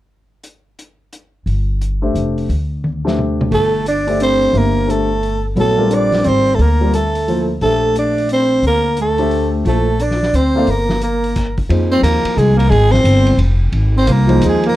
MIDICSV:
0, 0, Header, 1, 7, 480
1, 0, Start_track
1, 0, Tempo, 341103
1, 619, Time_signature, 3, 2, 24, 8
1, 20770, End_track
2, 0, Start_track
2, 0, Title_t, "Soprano saxophone"
2, 0, Program_c, 0, 64
2, 4985, Note_on_c, 0, 69, 84
2, 5419, Note_off_c, 0, 69, 0
2, 5466, Note_on_c, 0, 74, 73
2, 5900, Note_off_c, 0, 74, 0
2, 5954, Note_on_c, 0, 72, 88
2, 6440, Note_on_c, 0, 70, 84
2, 6461, Note_off_c, 0, 72, 0
2, 6917, Note_on_c, 0, 69, 72
2, 6938, Note_off_c, 0, 70, 0
2, 7684, Note_off_c, 0, 69, 0
2, 7889, Note_on_c, 0, 69, 85
2, 8362, Note_on_c, 0, 74, 82
2, 8384, Note_off_c, 0, 69, 0
2, 8840, Note_on_c, 0, 72, 83
2, 8861, Note_off_c, 0, 74, 0
2, 9219, Note_on_c, 0, 69, 52
2, 9240, Note_off_c, 0, 72, 0
2, 9322, Note_on_c, 0, 70, 82
2, 9343, Note_off_c, 0, 69, 0
2, 9769, Note_off_c, 0, 70, 0
2, 9778, Note_on_c, 0, 69, 71
2, 10500, Note_off_c, 0, 69, 0
2, 10729, Note_on_c, 0, 69, 88
2, 11170, Note_off_c, 0, 69, 0
2, 11241, Note_on_c, 0, 74, 74
2, 11667, Note_off_c, 0, 74, 0
2, 11726, Note_on_c, 0, 72, 80
2, 12149, Note_off_c, 0, 72, 0
2, 12200, Note_on_c, 0, 70, 88
2, 12626, Note_off_c, 0, 70, 0
2, 12684, Note_on_c, 0, 69, 74
2, 13392, Note_off_c, 0, 69, 0
2, 13634, Note_on_c, 0, 69, 73
2, 14111, Note_on_c, 0, 74, 85
2, 14133, Note_off_c, 0, 69, 0
2, 14568, Note_on_c, 0, 72, 75
2, 14589, Note_off_c, 0, 74, 0
2, 15063, Note_on_c, 0, 70, 88
2, 15084, Note_off_c, 0, 72, 0
2, 15526, Note_off_c, 0, 70, 0
2, 15541, Note_on_c, 0, 70, 62
2, 16256, Note_off_c, 0, 70, 0
2, 16774, Note_on_c, 0, 72, 88
2, 16925, Note_off_c, 0, 72, 0
2, 16933, Note_on_c, 0, 70, 87
2, 17433, Note_on_c, 0, 68, 80
2, 17454, Note_off_c, 0, 70, 0
2, 17710, Note_off_c, 0, 68, 0
2, 17719, Note_on_c, 0, 70, 84
2, 17880, Note_on_c, 0, 68, 95
2, 17901, Note_off_c, 0, 70, 0
2, 18178, Note_on_c, 0, 72, 88
2, 18199, Note_off_c, 0, 68, 0
2, 18844, Note_off_c, 0, 72, 0
2, 19677, Note_on_c, 0, 72, 85
2, 19874, Note_on_c, 0, 70, 72
2, 19895, Note_off_c, 0, 72, 0
2, 20323, Note_off_c, 0, 70, 0
2, 20395, Note_on_c, 0, 68, 77
2, 20632, Note_off_c, 0, 68, 0
2, 20672, Note_on_c, 0, 70, 77
2, 20770, Note_off_c, 0, 70, 0
2, 20770, End_track
3, 0, Start_track
3, 0, Title_t, "Grand piano"
3, 0, Program_c, 1, 0
3, 2841, Note_on_c, 1, 57, 53
3, 2847, Note_on_c, 1, 62, 50
3, 2851, Note_on_c, 1, 67, 48
3, 2855, Note_on_c, 1, 72, 50
3, 2871, Note_on_c, 1, 76, 59
3, 3470, Note_off_c, 1, 57, 0
3, 3473, Note_off_c, 1, 62, 0
3, 3475, Note_off_c, 1, 67, 0
3, 3477, Note_off_c, 1, 72, 0
3, 3485, Note_off_c, 1, 76, 0
3, 4285, Note_on_c, 1, 57, 52
3, 4289, Note_on_c, 1, 62, 50
3, 4290, Note_on_c, 1, 67, 48
3, 4302, Note_on_c, 1, 72, 50
3, 4309, Note_on_c, 1, 76, 57
3, 4913, Note_off_c, 1, 57, 0
3, 4915, Note_off_c, 1, 62, 0
3, 4916, Note_off_c, 1, 67, 0
3, 4922, Note_off_c, 1, 72, 0
3, 4925, Note_off_c, 1, 76, 0
3, 5732, Note_on_c, 1, 57, 60
3, 5734, Note_on_c, 1, 62, 61
3, 5744, Note_on_c, 1, 67, 58
3, 5751, Note_on_c, 1, 72, 55
3, 5755, Note_on_c, 1, 76, 68
3, 6351, Note_off_c, 1, 62, 0
3, 6357, Note_off_c, 1, 57, 0
3, 6358, Note_off_c, 1, 67, 0
3, 6367, Note_off_c, 1, 72, 0
3, 6369, Note_off_c, 1, 76, 0
3, 6373, Note_on_c, 1, 62, 42
3, 6379, Note_on_c, 1, 58, 44
3, 6379, Note_on_c, 1, 67, 40
3, 6394, Note_on_c, 1, 72, 38
3, 6399, Note_on_c, 1, 76, 50
3, 6843, Note_off_c, 1, 67, 0
3, 6844, Note_off_c, 1, 62, 0
3, 6851, Note_off_c, 1, 58, 0
3, 6852, Note_off_c, 1, 72, 0
3, 6853, Note_on_c, 1, 57, 49
3, 6861, Note_off_c, 1, 76, 0
3, 6864, Note_on_c, 1, 67, 44
3, 6865, Note_on_c, 1, 62, 47
3, 6873, Note_on_c, 1, 72, 44
3, 6883, Note_on_c, 1, 76, 56
3, 7142, Note_off_c, 1, 57, 0
3, 7147, Note_off_c, 1, 67, 0
3, 7148, Note_off_c, 1, 62, 0
3, 7151, Note_off_c, 1, 72, 0
3, 7156, Note_off_c, 1, 76, 0
3, 7830, Note_on_c, 1, 59, 52
3, 7835, Note_on_c, 1, 54, 62
3, 7839, Note_on_c, 1, 64, 53
3, 7845, Note_on_c, 1, 73, 60
3, 7849, Note_on_c, 1, 69, 58
3, 8110, Note_off_c, 1, 59, 0
3, 8112, Note_off_c, 1, 54, 0
3, 8115, Note_off_c, 1, 64, 0
3, 8117, Note_off_c, 1, 73, 0
3, 8120, Note_off_c, 1, 69, 0
3, 8123, Note_on_c, 1, 55, 64
3, 8130, Note_on_c, 1, 60, 51
3, 8140, Note_on_c, 1, 70, 55
3, 8141, Note_on_c, 1, 65, 58
3, 8150, Note_on_c, 1, 74, 65
3, 9164, Note_off_c, 1, 55, 0
3, 9166, Note_off_c, 1, 60, 0
3, 9172, Note_off_c, 1, 70, 0
3, 9173, Note_off_c, 1, 65, 0
3, 9177, Note_off_c, 1, 74, 0
3, 9576, Note_on_c, 1, 55, 51
3, 9584, Note_on_c, 1, 60, 45
3, 9589, Note_on_c, 1, 65, 44
3, 9598, Note_on_c, 1, 70, 48
3, 9606, Note_on_c, 1, 74, 55
3, 9736, Note_off_c, 1, 55, 0
3, 9741, Note_off_c, 1, 60, 0
3, 9743, Note_off_c, 1, 65, 0
3, 9748, Note_off_c, 1, 70, 0
3, 9751, Note_off_c, 1, 74, 0
3, 10240, Note_on_c, 1, 53, 52
3, 10245, Note_on_c, 1, 58, 51
3, 10256, Note_on_c, 1, 64, 45
3, 10257, Note_on_c, 1, 69, 48
3, 10259, Note_on_c, 1, 72, 61
3, 10515, Note_off_c, 1, 53, 0
3, 10517, Note_off_c, 1, 58, 0
3, 10523, Note_off_c, 1, 64, 0
3, 10523, Note_off_c, 1, 69, 0
3, 10524, Note_off_c, 1, 72, 0
3, 10715, Note_on_c, 1, 57, 42
3, 10723, Note_on_c, 1, 67, 44
3, 10726, Note_on_c, 1, 62, 43
3, 10730, Note_on_c, 1, 72, 37
3, 10741, Note_on_c, 1, 76, 53
3, 12051, Note_off_c, 1, 57, 0
3, 12055, Note_off_c, 1, 67, 0
3, 12057, Note_off_c, 1, 62, 0
3, 12059, Note_off_c, 1, 72, 0
3, 12064, Note_off_c, 1, 76, 0
3, 12929, Note_on_c, 1, 62, 53
3, 12930, Note_on_c, 1, 57, 63
3, 12932, Note_on_c, 1, 67, 53
3, 12937, Note_on_c, 1, 72, 56
3, 12948, Note_on_c, 1, 76, 68
3, 13553, Note_off_c, 1, 62, 0
3, 13554, Note_off_c, 1, 57, 0
3, 13555, Note_off_c, 1, 67, 0
3, 13557, Note_off_c, 1, 72, 0
3, 13563, Note_off_c, 1, 76, 0
3, 13585, Note_on_c, 1, 53, 47
3, 13596, Note_on_c, 1, 58, 42
3, 13607, Note_on_c, 1, 69, 39
3, 13608, Note_on_c, 1, 64, 46
3, 13619, Note_on_c, 1, 72, 53
3, 13865, Note_off_c, 1, 53, 0
3, 13871, Note_off_c, 1, 58, 0
3, 13876, Note_off_c, 1, 69, 0
3, 13877, Note_off_c, 1, 64, 0
3, 13882, Note_off_c, 1, 72, 0
3, 14853, Note_on_c, 1, 58, 73
3, 14861, Note_on_c, 1, 64, 62
3, 14877, Note_on_c, 1, 69, 59
3, 14884, Note_on_c, 1, 74, 64
3, 14887, Note_on_c, 1, 77, 77
3, 15012, Note_off_c, 1, 58, 0
3, 15016, Note_off_c, 1, 64, 0
3, 15023, Note_off_c, 1, 69, 0
3, 15027, Note_off_c, 1, 74, 0
3, 15028, Note_off_c, 1, 77, 0
3, 16453, Note_on_c, 1, 53, 49
3, 16454, Note_on_c, 1, 58, 47
3, 16463, Note_on_c, 1, 63, 47
3, 16471, Note_on_c, 1, 68, 47
3, 16474, Note_on_c, 1, 72, 54
3, 17791, Note_off_c, 1, 53, 0
3, 17791, Note_off_c, 1, 58, 0
3, 17796, Note_off_c, 1, 63, 0
3, 17800, Note_off_c, 1, 68, 0
3, 17801, Note_off_c, 1, 72, 0
3, 20082, Note_on_c, 1, 53, 70
3, 20101, Note_on_c, 1, 63, 60
3, 20103, Note_on_c, 1, 58, 64
3, 20106, Note_on_c, 1, 72, 79
3, 20113, Note_on_c, 1, 68, 59
3, 20718, Note_off_c, 1, 53, 0
3, 20727, Note_off_c, 1, 63, 0
3, 20728, Note_off_c, 1, 58, 0
3, 20729, Note_off_c, 1, 72, 0
3, 20733, Note_off_c, 1, 68, 0
3, 20770, End_track
4, 0, Start_track
4, 0, Title_t, "Alto saxophone"
4, 0, Program_c, 2, 65
4, 4941, Note_on_c, 2, 57, 68
4, 5395, Note_off_c, 2, 57, 0
4, 5457, Note_on_c, 2, 62, 72
4, 5894, Note_off_c, 2, 62, 0
4, 5928, Note_on_c, 2, 60, 69
4, 6388, Note_on_c, 2, 58, 72
4, 6410, Note_off_c, 2, 60, 0
4, 6874, Note_on_c, 2, 57, 64
4, 6895, Note_off_c, 2, 58, 0
4, 7663, Note_off_c, 2, 57, 0
4, 7826, Note_on_c, 2, 57, 64
4, 8311, Note_on_c, 2, 62, 72
4, 8332, Note_off_c, 2, 57, 0
4, 8791, Note_on_c, 2, 60, 69
4, 8812, Note_off_c, 2, 62, 0
4, 9215, Note_on_c, 2, 57, 52
4, 9237, Note_off_c, 2, 60, 0
4, 9286, Note_on_c, 2, 58, 72
4, 9307, Note_off_c, 2, 57, 0
4, 9762, Note_off_c, 2, 58, 0
4, 9785, Note_on_c, 2, 57, 63
4, 10504, Note_off_c, 2, 57, 0
4, 10748, Note_on_c, 2, 57, 62
4, 11180, Note_off_c, 2, 57, 0
4, 11237, Note_on_c, 2, 62, 63
4, 11665, Note_off_c, 2, 62, 0
4, 11699, Note_on_c, 2, 60, 61
4, 12135, Note_off_c, 2, 60, 0
4, 12196, Note_on_c, 2, 58, 64
4, 12624, Note_off_c, 2, 58, 0
4, 12661, Note_on_c, 2, 57, 60
4, 13380, Note_off_c, 2, 57, 0
4, 13582, Note_on_c, 2, 57, 63
4, 14087, Note_on_c, 2, 62, 69
4, 14108, Note_off_c, 2, 57, 0
4, 14576, Note_on_c, 2, 60, 61
4, 14597, Note_off_c, 2, 62, 0
4, 15027, Note_on_c, 2, 58, 61
4, 15049, Note_off_c, 2, 60, 0
4, 15502, Note_off_c, 2, 58, 0
4, 15511, Note_on_c, 2, 58, 60
4, 16240, Note_off_c, 2, 58, 0
4, 16766, Note_on_c, 2, 60, 80
4, 16926, Note_off_c, 2, 60, 0
4, 16934, Note_on_c, 2, 58, 68
4, 17394, Note_on_c, 2, 56, 66
4, 17415, Note_off_c, 2, 58, 0
4, 17668, Note_off_c, 2, 56, 0
4, 17677, Note_on_c, 2, 58, 70
4, 17850, Note_on_c, 2, 56, 68
4, 17871, Note_off_c, 2, 58, 0
4, 18167, Note_on_c, 2, 60, 74
4, 18188, Note_off_c, 2, 56, 0
4, 18838, Note_off_c, 2, 60, 0
4, 19659, Note_on_c, 2, 60, 72
4, 19812, Note_on_c, 2, 58, 66
4, 19833, Note_off_c, 2, 60, 0
4, 20292, Note_off_c, 2, 58, 0
4, 20323, Note_on_c, 2, 56, 67
4, 20593, Note_off_c, 2, 56, 0
4, 20629, Note_on_c, 2, 58, 77
4, 20770, Note_off_c, 2, 58, 0
4, 20770, End_track
5, 0, Start_track
5, 0, Title_t, "Upright bass"
5, 0, Program_c, 3, 32
5, 2053, Note_on_c, 3, 31, 61
5, 2968, Note_off_c, 3, 31, 0
5, 3022, Note_on_c, 3, 29, 56
5, 3474, Note_off_c, 3, 29, 0
5, 3501, Note_on_c, 3, 38, 66
5, 4894, Note_off_c, 3, 38, 0
5, 4941, Note_on_c, 3, 31, 68
5, 6334, Note_off_c, 3, 31, 0
5, 6378, Note_on_c, 3, 31, 70
5, 7772, Note_off_c, 3, 31, 0
5, 7819, Note_on_c, 3, 34, 69
5, 8733, Note_off_c, 3, 34, 0
5, 8793, Note_on_c, 3, 32, 66
5, 9242, Note_off_c, 3, 32, 0
5, 9268, Note_on_c, 3, 38, 73
5, 10656, Note_off_c, 3, 38, 0
5, 10712, Note_on_c, 3, 34, 70
5, 12097, Note_off_c, 3, 34, 0
5, 12134, Note_on_c, 3, 38, 69
5, 13527, Note_off_c, 3, 38, 0
5, 13579, Note_on_c, 3, 34, 76
5, 14488, Note_off_c, 3, 34, 0
5, 14537, Note_on_c, 3, 38, 59
5, 14989, Note_off_c, 3, 38, 0
5, 15020, Note_on_c, 3, 31, 68
5, 16405, Note_off_c, 3, 31, 0
5, 16455, Note_on_c, 3, 41, 80
5, 16910, Note_off_c, 3, 41, 0
5, 16918, Note_on_c, 3, 39, 82
5, 17215, Note_off_c, 3, 39, 0
5, 17401, Note_on_c, 3, 36, 80
5, 17861, Note_off_c, 3, 36, 0
5, 17870, Note_on_c, 3, 32, 77
5, 18341, Note_off_c, 3, 32, 0
5, 18350, Note_on_c, 3, 31, 88
5, 18814, Note_off_c, 3, 31, 0
5, 18823, Note_on_c, 3, 29, 79
5, 19304, Note_off_c, 3, 29, 0
5, 19310, Note_on_c, 3, 32, 74
5, 19786, Note_off_c, 3, 32, 0
5, 19801, Note_on_c, 3, 36, 82
5, 20271, Note_off_c, 3, 36, 0
5, 20279, Note_on_c, 3, 39, 84
5, 20749, Note_off_c, 3, 39, 0
5, 20770, End_track
6, 0, Start_track
6, 0, Title_t, "Muted upright bass strokes"
6, 17232, Note_on_c, 9, 29, 38
6, 17373, Note_off_c, 9, 29, 0
6, 20770, End_track
7, 0, Start_track
7, 0, Title_t, "Drums"
7, 612, Note_on_c, 9, 42, 38
7, 753, Note_off_c, 9, 42, 0
7, 1108, Note_on_c, 9, 42, 38
7, 1248, Note_off_c, 9, 42, 0
7, 1585, Note_on_c, 9, 42, 40
7, 1725, Note_off_c, 9, 42, 0
7, 2070, Note_on_c, 9, 46, 30
7, 2211, Note_off_c, 9, 46, 0
7, 2552, Note_on_c, 9, 42, 38
7, 2693, Note_off_c, 9, 42, 0
7, 3031, Note_on_c, 9, 42, 35
7, 3172, Note_off_c, 9, 42, 0
7, 3345, Note_on_c, 9, 46, 25
7, 3486, Note_off_c, 9, 46, 0
7, 3514, Note_on_c, 9, 46, 31
7, 3654, Note_off_c, 9, 46, 0
7, 3997, Note_on_c, 9, 48, 31
7, 4137, Note_off_c, 9, 48, 0
7, 4323, Note_on_c, 9, 38, 47
7, 4463, Note_off_c, 9, 38, 0
7, 4485, Note_on_c, 9, 47, 40
7, 4626, Note_off_c, 9, 47, 0
7, 4797, Note_on_c, 9, 47, 60
7, 4938, Note_off_c, 9, 47, 0
7, 4950, Note_on_c, 9, 51, 48
7, 4952, Note_on_c, 9, 36, 53
7, 5091, Note_off_c, 9, 51, 0
7, 5093, Note_off_c, 9, 36, 0
7, 5434, Note_on_c, 9, 42, 46
7, 5574, Note_off_c, 9, 42, 0
7, 5735, Note_on_c, 9, 46, 33
7, 5875, Note_off_c, 9, 46, 0
7, 5910, Note_on_c, 9, 42, 45
7, 6050, Note_off_c, 9, 42, 0
7, 6215, Note_on_c, 9, 46, 32
7, 6356, Note_off_c, 9, 46, 0
7, 6400, Note_on_c, 9, 46, 35
7, 6541, Note_off_c, 9, 46, 0
7, 6892, Note_on_c, 9, 42, 46
7, 7033, Note_off_c, 9, 42, 0
7, 7359, Note_on_c, 9, 46, 34
7, 7500, Note_off_c, 9, 46, 0
7, 7833, Note_on_c, 9, 46, 33
7, 7973, Note_off_c, 9, 46, 0
7, 8311, Note_on_c, 9, 42, 41
7, 8452, Note_off_c, 9, 42, 0
7, 8614, Note_on_c, 9, 46, 31
7, 8618, Note_on_c, 9, 38, 42
7, 8755, Note_off_c, 9, 46, 0
7, 8759, Note_off_c, 9, 38, 0
7, 8782, Note_on_c, 9, 42, 41
7, 8923, Note_off_c, 9, 42, 0
7, 9091, Note_on_c, 9, 46, 32
7, 9232, Note_off_c, 9, 46, 0
7, 9274, Note_on_c, 9, 46, 36
7, 9415, Note_off_c, 9, 46, 0
7, 9758, Note_on_c, 9, 42, 47
7, 9899, Note_off_c, 9, 42, 0
7, 10064, Note_on_c, 9, 46, 35
7, 10205, Note_off_c, 9, 46, 0
7, 10246, Note_on_c, 9, 46, 37
7, 10386, Note_off_c, 9, 46, 0
7, 10712, Note_on_c, 9, 46, 32
7, 10852, Note_off_c, 9, 46, 0
7, 11195, Note_on_c, 9, 42, 43
7, 11336, Note_off_c, 9, 42, 0
7, 11512, Note_on_c, 9, 46, 35
7, 11653, Note_off_c, 9, 46, 0
7, 11663, Note_on_c, 9, 42, 41
7, 11804, Note_off_c, 9, 42, 0
7, 12147, Note_on_c, 9, 46, 35
7, 12288, Note_off_c, 9, 46, 0
7, 12618, Note_on_c, 9, 42, 43
7, 12759, Note_off_c, 9, 42, 0
7, 12919, Note_on_c, 9, 46, 30
7, 13060, Note_off_c, 9, 46, 0
7, 13102, Note_on_c, 9, 46, 37
7, 13243, Note_off_c, 9, 46, 0
7, 13588, Note_on_c, 9, 46, 37
7, 13728, Note_off_c, 9, 46, 0
7, 14065, Note_on_c, 9, 42, 43
7, 14206, Note_off_c, 9, 42, 0
7, 14225, Note_on_c, 9, 38, 26
7, 14366, Note_off_c, 9, 38, 0
7, 14390, Note_on_c, 9, 38, 36
7, 14531, Note_off_c, 9, 38, 0
7, 14547, Note_on_c, 9, 42, 43
7, 14688, Note_off_c, 9, 42, 0
7, 15014, Note_on_c, 9, 46, 38
7, 15155, Note_off_c, 9, 46, 0
7, 15327, Note_on_c, 9, 38, 43
7, 15467, Note_off_c, 9, 38, 0
7, 15500, Note_on_c, 9, 42, 43
7, 15640, Note_off_c, 9, 42, 0
7, 15814, Note_on_c, 9, 46, 32
7, 15955, Note_off_c, 9, 46, 0
7, 15981, Note_on_c, 9, 42, 43
7, 15985, Note_on_c, 9, 49, 56
7, 15987, Note_on_c, 9, 36, 69
7, 16122, Note_off_c, 9, 42, 0
7, 16126, Note_off_c, 9, 49, 0
7, 16128, Note_off_c, 9, 36, 0
7, 16288, Note_on_c, 9, 46, 33
7, 16293, Note_on_c, 9, 36, 57
7, 16429, Note_off_c, 9, 46, 0
7, 16434, Note_off_c, 9, 36, 0
7, 16466, Note_on_c, 9, 51, 54
7, 16607, Note_off_c, 9, 51, 0
7, 16941, Note_on_c, 9, 44, 55
7, 16941, Note_on_c, 9, 51, 64
7, 17082, Note_off_c, 9, 44, 0
7, 17082, Note_off_c, 9, 51, 0
7, 17238, Note_on_c, 9, 51, 68
7, 17379, Note_off_c, 9, 51, 0
7, 17410, Note_on_c, 9, 44, 52
7, 17551, Note_off_c, 9, 44, 0
7, 17730, Note_on_c, 9, 51, 48
7, 17870, Note_off_c, 9, 51, 0
7, 17895, Note_on_c, 9, 51, 51
7, 18036, Note_off_c, 9, 51, 0
7, 18202, Note_on_c, 9, 38, 37
7, 18342, Note_off_c, 9, 38, 0
7, 18365, Note_on_c, 9, 44, 53
7, 18365, Note_on_c, 9, 51, 66
7, 18506, Note_off_c, 9, 44, 0
7, 18506, Note_off_c, 9, 51, 0
7, 18666, Note_on_c, 9, 51, 45
7, 18807, Note_off_c, 9, 51, 0
7, 18836, Note_on_c, 9, 51, 57
7, 18977, Note_off_c, 9, 51, 0
7, 19313, Note_on_c, 9, 51, 48
7, 19454, Note_off_c, 9, 51, 0
7, 19800, Note_on_c, 9, 44, 50
7, 19800, Note_on_c, 9, 51, 64
7, 19941, Note_off_c, 9, 44, 0
7, 19941, Note_off_c, 9, 51, 0
7, 20108, Note_on_c, 9, 51, 42
7, 20248, Note_off_c, 9, 51, 0
7, 20284, Note_on_c, 9, 44, 50
7, 20284, Note_on_c, 9, 51, 61
7, 20425, Note_off_c, 9, 44, 0
7, 20425, Note_off_c, 9, 51, 0
7, 20594, Note_on_c, 9, 51, 44
7, 20735, Note_off_c, 9, 51, 0
7, 20770, End_track
0, 0, End_of_file